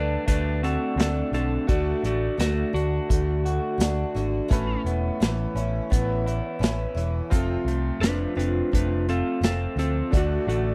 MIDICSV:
0, 0, Header, 1, 8, 480
1, 0, Start_track
1, 0, Tempo, 703400
1, 1149, Time_signature, 4, 2, 24, 8
1, 7333, End_track
2, 0, Start_track
2, 0, Title_t, "Upright piano"
2, 0, Program_c, 0, 0
2, 0, Note_on_c, 0, 66, 73
2, 0, Note_on_c, 0, 69, 73
2, 0, Note_on_c, 0, 74, 88
2, 1117, Note_off_c, 0, 66, 0
2, 1122, Note_off_c, 0, 69, 0
2, 1126, Note_off_c, 0, 74, 0
2, 1140, Note_on_c, 0, 66, 70
2, 1146, Note_on_c, 0, 69, 65
2, 1152, Note_on_c, 0, 74, 65
2, 3038, Note_off_c, 0, 66, 0
2, 3041, Note_off_c, 0, 69, 0
2, 3044, Note_off_c, 0, 74, 0
2, 3071, Note_on_c, 0, 61, 77
2, 3078, Note_on_c, 0, 69, 71
2, 3086, Note_on_c, 0, 71, 83
2, 4963, Note_off_c, 0, 61, 0
2, 4967, Note_off_c, 0, 69, 0
2, 4971, Note_off_c, 0, 71, 0
2, 4982, Note_on_c, 0, 60, 78
2, 4988, Note_on_c, 0, 65, 80
2, 5001, Note_on_c, 0, 69, 81
2, 6879, Note_off_c, 0, 60, 0
2, 6882, Note_off_c, 0, 65, 0
2, 6889, Note_off_c, 0, 69, 0
2, 6896, Note_on_c, 0, 62, 66
2, 6909, Note_on_c, 0, 66, 60
2, 6913, Note_on_c, 0, 69, 69
2, 7333, Note_off_c, 0, 62, 0
2, 7333, Note_off_c, 0, 66, 0
2, 7333, Note_off_c, 0, 69, 0
2, 7333, End_track
3, 0, Start_track
3, 0, Title_t, "Accordion"
3, 0, Program_c, 1, 21
3, 6912, Note_on_c, 1, 66, 78
3, 6914, Note_on_c, 1, 69, 82
3, 6918, Note_on_c, 1, 62, 81
3, 6919, Note_on_c, 1, 74, 78
3, 7333, Note_off_c, 1, 62, 0
3, 7333, Note_off_c, 1, 66, 0
3, 7333, Note_off_c, 1, 69, 0
3, 7333, Note_off_c, 1, 74, 0
3, 7333, End_track
4, 0, Start_track
4, 0, Title_t, "Electric slide guitar"
4, 0, Program_c, 2, 29
4, 0, Note_on_c, 2, 62, 80
4, 0, Note_on_c, 2, 71, 80
4, 176, Note_off_c, 2, 62, 0
4, 187, Note_off_c, 2, 71, 0
4, 189, Note_on_c, 2, 62, 85
4, 195, Note_on_c, 2, 71, 92
4, 412, Note_off_c, 2, 62, 0
4, 425, Note_off_c, 2, 71, 0
4, 432, Note_on_c, 2, 60, 63
4, 439, Note_on_c, 2, 69, 80
4, 655, Note_off_c, 2, 60, 0
4, 663, Note_on_c, 2, 60, 72
4, 666, Note_off_c, 2, 69, 0
4, 681, Note_on_c, 2, 69, 86
4, 889, Note_off_c, 2, 60, 0
4, 908, Note_off_c, 2, 69, 0
4, 917, Note_on_c, 2, 60, 73
4, 917, Note_on_c, 2, 69, 96
4, 1137, Note_off_c, 2, 60, 0
4, 1146, Note_off_c, 2, 69, 0
4, 1153, Note_on_c, 2, 66, 77
4, 1162, Note_on_c, 2, 57, 71
4, 1379, Note_off_c, 2, 57, 0
4, 1384, Note_off_c, 2, 66, 0
4, 1403, Note_on_c, 2, 57, 74
4, 1403, Note_on_c, 2, 66, 87
4, 1620, Note_off_c, 2, 57, 0
4, 1629, Note_off_c, 2, 66, 0
4, 1636, Note_on_c, 2, 57, 77
4, 1639, Note_on_c, 2, 66, 89
4, 1856, Note_off_c, 2, 57, 0
4, 1865, Note_off_c, 2, 66, 0
4, 1873, Note_on_c, 2, 66, 92
4, 3284, Note_off_c, 2, 66, 0
4, 5468, Note_on_c, 2, 71, 97
4, 5475, Note_on_c, 2, 62, 93
4, 5702, Note_off_c, 2, 62, 0
4, 5702, Note_off_c, 2, 71, 0
4, 5709, Note_on_c, 2, 62, 78
4, 5712, Note_on_c, 2, 71, 83
4, 5933, Note_off_c, 2, 62, 0
4, 5943, Note_off_c, 2, 71, 0
4, 5959, Note_on_c, 2, 62, 70
4, 5969, Note_on_c, 2, 71, 82
4, 6178, Note_off_c, 2, 62, 0
4, 6193, Note_off_c, 2, 71, 0
4, 6203, Note_on_c, 2, 60, 68
4, 6207, Note_on_c, 2, 69, 84
4, 6421, Note_off_c, 2, 60, 0
4, 6431, Note_off_c, 2, 69, 0
4, 6439, Note_on_c, 2, 60, 75
4, 6443, Note_on_c, 2, 69, 85
4, 6658, Note_off_c, 2, 60, 0
4, 6668, Note_off_c, 2, 69, 0
4, 6680, Note_on_c, 2, 60, 79
4, 6681, Note_on_c, 2, 69, 90
4, 6899, Note_off_c, 2, 60, 0
4, 6908, Note_off_c, 2, 69, 0
4, 6928, Note_on_c, 2, 57, 70
4, 6942, Note_on_c, 2, 66, 83
4, 7143, Note_off_c, 2, 57, 0
4, 7147, Note_off_c, 2, 66, 0
4, 7155, Note_on_c, 2, 66, 86
4, 7159, Note_on_c, 2, 57, 80
4, 7333, Note_off_c, 2, 57, 0
4, 7333, Note_off_c, 2, 66, 0
4, 7333, End_track
5, 0, Start_track
5, 0, Title_t, "Twelve-string acoustic guitar"
5, 0, Program_c, 3, 25
5, 0, Note_on_c, 3, 57, 39
5, 0, Note_on_c, 3, 62, 50
5, 0, Note_on_c, 3, 66, 59
5, 187, Note_off_c, 3, 66, 0
5, 190, Note_off_c, 3, 57, 0
5, 190, Note_on_c, 3, 50, 57
5, 191, Note_off_c, 3, 62, 0
5, 198, Note_on_c, 3, 57, 62
5, 205, Note_on_c, 3, 62, 68
5, 213, Note_on_c, 3, 66, 67
5, 658, Note_off_c, 3, 50, 0
5, 667, Note_on_c, 3, 50, 54
5, 673, Note_off_c, 3, 57, 0
5, 676, Note_on_c, 3, 57, 58
5, 677, Note_off_c, 3, 62, 0
5, 681, Note_off_c, 3, 66, 0
5, 688, Note_on_c, 3, 62, 63
5, 690, Note_on_c, 3, 66, 61
5, 900, Note_off_c, 3, 66, 0
5, 908, Note_off_c, 3, 50, 0
5, 908, Note_on_c, 3, 66, 53
5, 909, Note_off_c, 3, 62, 0
5, 913, Note_off_c, 3, 57, 0
5, 917, Note_on_c, 3, 62, 48
5, 932, Note_on_c, 3, 57, 44
5, 1149, Note_off_c, 3, 66, 0
5, 1153, Note_off_c, 3, 57, 0
5, 1153, Note_off_c, 3, 62, 0
5, 1153, Note_on_c, 3, 50, 77
5, 1162, Note_on_c, 3, 57, 76
5, 1162, Note_on_c, 3, 62, 84
5, 1171, Note_on_c, 3, 66, 86
5, 1612, Note_off_c, 3, 50, 0
5, 1620, Note_on_c, 3, 50, 54
5, 1622, Note_off_c, 3, 57, 0
5, 1625, Note_on_c, 3, 57, 66
5, 1628, Note_off_c, 3, 62, 0
5, 1633, Note_off_c, 3, 66, 0
5, 1636, Note_on_c, 3, 62, 57
5, 1641, Note_on_c, 3, 66, 63
5, 1855, Note_off_c, 3, 66, 0
5, 1863, Note_on_c, 3, 66, 58
5, 1865, Note_off_c, 3, 50, 0
5, 1866, Note_off_c, 3, 62, 0
5, 1867, Note_off_c, 3, 57, 0
5, 1874, Note_on_c, 3, 62, 45
5, 1888, Note_on_c, 3, 57, 46
5, 2106, Note_off_c, 3, 66, 0
5, 2110, Note_off_c, 3, 57, 0
5, 2112, Note_off_c, 3, 62, 0
5, 2112, Note_on_c, 3, 50, 57
5, 2118, Note_on_c, 3, 57, 67
5, 2128, Note_on_c, 3, 62, 61
5, 2133, Note_on_c, 3, 66, 62
5, 2569, Note_off_c, 3, 50, 0
5, 2577, Note_on_c, 3, 50, 63
5, 2585, Note_off_c, 3, 62, 0
5, 2586, Note_off_c, 3, 57, 0
5, 2589, Note_on_c, 3, 57, 64
5, 2592, Note_off_c, 3, 66, 0
5, 2593, Note_on_c, 3, 62, 70
5, 2600, Note_on_c, 3, 66, 70
5, 2820, Note_off_c, 3, 66, 0
5, 2823, Note_off_c, 3, 50, 0
5, 2829, Note_off_c, 3, 57, 0
5, 2829, Note_on_c, 3, 66, 61
5, 2831, Note_off_c, 3, 62, 0
5, 2839, Note_on_c, 3, 62, 56
5, 2848, Note_on_c, 3, 57, 53
5, 3059, Note_on_c, 3, 45, 79
5, 3061, Note_on_c, 3, 52, 86
5, 3062, Note_off_c, 3, 57, 0
5, 3064, Note_on_c, 3, 59, 81
5, 3069, Note_off_c, 3, 62, 0
5, 3069, Note_off_c, 3, 66, 0
5, 3072, Note_on_c, 3, 61, 85
5, 3076, Note_on_c, 3, 64, 87
5, 3541, Note_off_c, 3, 52, 0
5, 3544, Note_off_c, 3, 45, 0
5, 3547, Note_off_c, 3, 59, 0
5, 3549, Note_on_c, 3, 52, 66
5, 3551, Note_off_c, 3, 61, 0
5, 3553, Note_off_c, 3, 64, 0
5, 3555, Note_on_c, 3, 59, 63
5, 3565, Note_on_c, 3, 61, 80
5, 3569, Note_on_c, 3, 64, 73
5, 3784, Note_off_c, 3, 64, 0
5, 3789, Note_off_c, 3, 52, 0
5, 3792, Note_off_c, 3, 59, 0
5, 3792, Note_on_c, 3, 64, 66
5, 3797, Note_off_c, 3, 61, 0
5, 3806, Note_on_c, 3, 61, 58
5, 3812, Note_on_c, 3, 59, 46
5, 4026, Note_on_c, 3, 52, 69
5, 4027, Note_off_c, 3, 59, 0
5, 4031, Note_off_c, 3, 64, 0
5, 4035, Note_on_c, 3, 59, 79
5, 4036, Note_off_c, 3, 61, 0
5, 4044, Note_on_c, 3, 61, 74
5, 4050, Note_on_c, 3, 64, 73
5, 4490, Note_off_c, 3, 52, 0
5, 4498, Note_on_c, 3, 52, 62
5, 4499, Note_off_c, 3, 59, 0
5, 4507, Note_on_c, 3, 59, 66
5, 4509, Note_off_c, 3, 61, 0
5, 4512, Note_off_c, 3, 64, 0
5, 4517, Note_on_c, 3, 61, 62
5, 4520, Note_on_c, 3, 64, 72
5, 4731, Note_off_c, 3, 64, 0
5, 4739, Note_on_c, 3, 64, 60
5, 4744, Note_off_c, 3, 52, 0
5, 4746, Note_off_c, 3, 61, 0
5, 4749, Note_off_c, 3, 59, 0
5, 4754, Note_on_c, 3, 61, 51
5, 4761, Note_on_c, 3, 59, 57
5, 4985, Note_off_c, 3, 64, 0
5, 4988, Note_on_c, 3, 41, 79
5, 4991, Note_on_c, 3, 48, 94
5, 4992, Note_off_c, 3, 61, 0
5, 4992, Note_on_c, 3, 53, 91
5, 4994, Note_off_c, 3, 59, 0
5, 4996, Note_on_c, 3, 60, 91
5, 4997, Note_on_c, 3, 57, 96
5, 5004, Note_on_c, 3, 65, 84
5, 5457, Note_off_c, 3, 53, 0
5, 5465, Note_on_c, 3, 53, 58
5, 5469, Note_off_c, 3, 41, 0
5, 5470, Note_off_c, 3, 48, 0
5, 5471, Note_off_c, 3, 57, 0
5, 5473, Note_off_c, 3, 60, 0
5, 5474, Note_on_c, 3, 57, 54
5, 5477, Note_off_c, 3, 65, 0
5, 5484, Note_on_c, 3, 60, 60
5, 5484, Note_on_c, 3, 65, 67
5, 5693, Note_off_c, 3, 65, 0
5, 5701, Note_on_c, 3, 65, 55
5, 5704, Note_off_c, 3, 60, 0
5, 5708, Note_off_c, 3, 53, 0
5, 5708, Note_off_c, 3, 57, 0
5, 5712, Note_on_c, 3, 60, 51
5, 5717, Note_on_c, 3, 57, 51
5, 5728, Note_on_c, 3, 53, 49
5, 5939, Note_off_c, 3, 53, 0
5, 5943, Note_off_c, 3, 57, 0
5, 5946, Note_off_c, 3, 65, 0
5, 5947, Note_on_c, 3, 53, 58
5, 5951, Note_off_c, 3, 60, 0
5, 5952, Note_on_c, 3, 57, 62
5, 5960, Note_on_c, 3, 60, 62
5, 5968, Note_on_c, 3, 65, 61
5, 6416, Note_off_c, 3, 53, 0
5, 6424, Note_on_c, 3, 53, 55
5, 6428, Note_off_c, 3, 57, 0
5, 6429, Note_off_c, 3, 60, 0
5, 6430, Note_on_c, 3, 57, 62
5, 6437, Note_on_c, 3, 60, 55
5, 6439, Note_off_c, 3, 65, 0
5, 6446, Note_on_c, 3, 65, 60
5, 6656, Note_off_c, 3, 65, 0
5, 6664, Note_on_c, 3, 65, 53
5, 6666, Note_off_c, 3, 60, 0
5, 6667, Note_off_c, 3, 53, 0
5, 6670, Note_off_c, 3, 57, 0
5, 6674, Note_on_c, 3, 60, 50
5, 6682, Note_on_c, 3, 57, 49
5, 6686, Note_on_c, 3, 53, 46
5, 6903, Note_off_c, 3, 53, 0
5, 6903, Note_off_c, 3, 57, 0
5, 6906, Note_on_c, 3, 50, 69
5, 6907, Note_off_c, 3, 65, 0
5, 6911, Note_off_c, 3, 60, 0
5, 6911, Note_on_c, 3, 57, 70
5, 6914, Note_on_c, 3, 62, 82
5, 6923, Note_on_c, 3, 66, 89
5, 7333, Note_off_c, 3, 50, 0
5, 7333, Note_off_c, 3, 57, 0
5, 7333, Note_off_c, 3, 62, 0
5, 7333, Note_off_c, 3, 66, 0
5, 7333, End_track
6, 0, Start_track
6, 0, Title_t, "Clean electric guitar"
6, 0, Program_c, 4, 27
6, 0, Note_on_c, 4, 50, 66
6, 0, Note_on_c, 4, 57, 65
6, 175, Note_off_c, 4, 57, 0
6, 433, Note_on_c, 4, 66, 79
6, 899, Note_off_c, 4, 50, 0
6, 907, Note_on_c, 4, 50, 77
6, 1137, Note_off_c, 4, 50, 0
6, 1383, Note_on_c, 4, 57, 63
6, 1631, Note_off_c, 4, 66, 0
6, 2108, Note_off_c, 4, 57, 0
6, 2357, Note_on_c, 4, 66, 83
6, 2836, Note_on_c, 4, 50, 75
6, 3073, Note_off_c, 4, 50, 0
6, 3073, Note_off_c, 4, 66, 0
6, 3318, Note_on_c, 4, 59, 63
6, 4025, Note_off_c, 4, 59, 0
6, 4274, Note_on_c, 4, 64, 83
6, 4759, Note_on_c, 4, 52, 73
6, 4992, Note_off_c, 4, 64, 0
6, 4995, Note_off_c, 4, 52, 0
6, 5238, Note_on_c, 4, 57, 66
6, 5958, Note_off_c, 4, 57, 0
6, 6200, Note_on_c, 4, 65, 76
6, 6916, Note_off_c, 4, 65, 0
6, 7148, Note_on_c, 4, 57, 65
6, 7333, Note_off_c, 4, 57, 0
6, 7333, End_track
7, 0, Start_track
7, 0, Title_t, "Picked electric bass"
7, 0, Program_c, 5, 34
7, 0, Note_on_c, 5, 38, 73
7, 108, Note_off_c, 5, 38, 0
7, 187, Note_on_c, 5, 38, 83
7, 518, Note_off_c, 5, 38, 0
7, 656, Note_on_c, 5, 38, 98
7, 826, Note_off_c, 5, 38, 0
7, 899, Note_on_c, 5, 35, 91
7, 1068, Note_off_c, 5, 35, 0
7, 1149, Note_on_c, 5, 38, 86
7, 1315, Note_off_c, 5, 38, 0
7, 1388, Note_on_c, 5, 33, 85
7, 1554, Note_off_c, 5, 33, 0
7, 1626, Note_on_c, 5, 38, 85
7, 1792, Note_off_c, 5, 38, 0
7, 1868, Note_on_c, 5, 38, 84
7, 2034, Note_off_c, 5, 38, 0
7, 2114, Note_on_c, 5, 38, 90
7, 2443, Note_off_c, 5, 38, 0
7, 2581, Note_on_c, 5, 38, 93
7, 2749, Note_off_c, 5, 38, 0
7, 2832, Note_on_c, 5, 32, 90
7, 2996, Note_off_c, 5, 32, 0
7, 3073, Note_on_c, 5, 33, 97
7, 3237, Note_off_c, 5, 33, 0
7, 3306, Note_on_c, 5, 28, 89
7, 3472, Note_off_c, 5, 28, 0
7, 3555, Note_on_c, 5, 33, 91
7, 3719, Note_off_c, 5, 33, 0
7, 3785, Note_on_c, 5, 33, 82
7, 3952, Note_off_c, 5, 33, 0
7, 4037, Note_on_c, 5, 33, 86
7, 4365, Note_off_c, 5, 33, 0
7, 4504, Note_on_c, 5, 33, 96
7, 4671, Note_off_c, 5, 33, 0
7, 4741, Note_on_c, 5, 28, 97
7, 4909, Note_off_c, 5, 28, 0
7, 4991, Note_on_c, 5, 29, 94
7, 5156, Note_off_c, 5, 29, 0
7, 5218, Note_on_c, 5, 36, 89
7, 5388, Note_off_c, 5, 36, 0
7, 5458, Note_on_c, 5, 29, 83
7, 5627, Note_off_c, 5, 29, 0
7, 5707, Note_on_c, 5, 29, 83
7, 5873, Note_off_c, 5, 29, 0
7, 5957, Note_on_c, 5, 29, 83
7, 6285, Note_off_c, 5, 29, 0
7, 6421, Note_on_c, 5, 29, 88
7, 6589, Note_off_c, 5, 29, 0
7, 6659, Note_on_c, 5, 38, 93
7, 6828, Note_off_c, 5, 38, 0
7, 6910, Note_on_c, 5, 38, 92
7, 7075, Note_off_c, 5, 38, 0
7, 7145, Note_on_c, 5, 33, 91
7, 7312, Note_off_c, 5, 33, 0
7, 7333, End_track
8, 0, Start_track
8, 0, Title_t, "Drums"
8, 189, Note_on_c, 9, 42, 102
8, 190, Note_on_c, 9, 36, 99
8, 257, Note_off_c, 9, 42, 0
8, 258, Note_off_c, 9, 36, 0
8, 436, Note_on_c, 9, 42, 66
8, 504, Note_off_c, 9, 42, 0
8, 678, Note_on_c, 9, 42, 96
8, 686, Note_on_c, 9, 38, 109
8, 746, Note_off_c, 9, 42, 0
8, 754, Note_off_c, 9, 38, 0
8, 915, Note_on_c, 9, 42, 66
8, 983, Note_off_c, 9, 42, 0
8, 1150, Note_on_c, 9, 42, 85
8, 1152, Note_on_c, 9, 36, 114
8, 1218, Note_off_c, 9, 42, 0
8, 1220, Note_off_c, 9, 36, 0
8, 1394, Note_on_c, 9, 42, 66
8, 1463, Note_off_c, 9, 42, 0
8, 1634, Note_on_c, 9, 42, 94
8, 1642, Note_on_c, 9, 38, 107
8, 1702, Note_off_c, 9, 42, 0
8, 1710, Note_off_c, 9, 38, 0
8, 1881, Note_on_c, 9, 42, 68
8, 1949, Note_off_c, 9, 42, 0
8, 2116, Note_on_c, 9, 36, 98
8, 2119, Note_on_c, 9, 42, 101
8, 2184, Note_off_c, 9, 36, 0
8, 2187, Note_off_c, 9, 42, 0
8, 2360, Note_on_c, 9, 42, 65
8, 2428, Note_off_c, 9, 42, 0
8, 2595, Note_on_c, 9, 42, 95
8, 2603, Note_on_c, 9, 38, 116
8, 2663, Note_off_c, 9, 42, 0
8, 2671, Note_off_c, 9, 38, 0
8, 2840, Note_on_c, 9, 42, 63
8, 2908, Note_off_c, 9, 42, 0
8, 3077, Note_on_c, 9, 36, 110
8, 3079, Note_on_c, 9, 42, 89
8, 3145, Note_off_c, 9, 36, 0
8, 3147, Note_off_c, 9, 42, 0
8, 3319, Note_on_c, 9, 42, 66
8, 3387, Note_off_c, 9, 42, 0
8, 3558, Note_on_c, 9, 42, 93
8, 3566, Note_on_c, 9, 38, 118
8, 3626, Note_off_c, 9, 42, 0
8, 3635, Note_off_c, 9, 38, 0
8, 3800, Note_on_c, 9, 42, 71
8, 3868, Note_off_c, 9, 42, 0
8, 4039, Note_on_c, 9, 36, 97
8, 4045, Note_on_c, 9, 42, 100
8, 4107, Note_off_c, 9, 36, 0
8, 4113, Note_off_c, 9, 42, 0
8, 4281, Note_on_c, 9, 42, 74
8, 4349, Note_off_c, 9, 42, 0
8, 4522, Note_on_c, 9, 42, 93
8, 4530, Note_on_c, 9, 38, 113
8, 4590, Note_off_c, 9, 42, 0
8, 4599, Note_off_c, 9, 38, 0
8, 4758, Note_on_c, 9, 42, 72
8, 4826, Note_off_c, 9, 42, 0
8, 4997, Note_on_c, 9, 36, 107
8, 4999, Note_on_c, 9, 42, 93
8, 5065, Note_off_c, 9, 36, 0
8, 5067, Note_off_c, 9, 42, 0
8, 5239, Note_on_c, 9, 42, 66
8, 5307, Note_off_c, 9, 42, 0
8, 5478, Note_on_c, 9, 42, 89
8, 5486, Note_on_c, 9, 38, 113
8, 5546, Note_off_c, 9, 42, 0
8, 5554, Note_off_c, 9, 38, 0
8, 5727, Note_on_c, 9, 42, 66
8, 5795, Note_off_c, 9, 42, 0
8, 5959, Note_on_c, 9, 36, 87
8, 5968, Note_on_c, 9, 42, 97
8, 6027, Note_off_c, 9, 36, 0
8, 6036, Note_off_c, 9, 42, 0
8, 6200, Note_on_c, 9, 42, 64
8, 6269, Note_off_c, 9, 42, 0
8, 6437, Note_on_c, 9, 42, 101
8, 6445, Note_on_c, 9, 38, 120
8, 6505, Note_off_c, 9, 42, 0
8, 6513, Note_off_c, 9, 38, 0
8, 6678, Note_on_c, 9, 42, 70
8, 6746, Note_off_c, 9, 42, 0
8, 6914, Note_on_c, 9, 36, 106
8, 6916, Note_on_c, 9, 42, 86
8, 6982, Note_off_c, 9, 36, 0
8, 6984, Note_off_c, 9, 42, 0
8, 7160, Note_on_c, 9, 42, 68
8, 7229, Note_off_c, 9, 42, 0
8, 7333, End_track
0, 0, End_of_file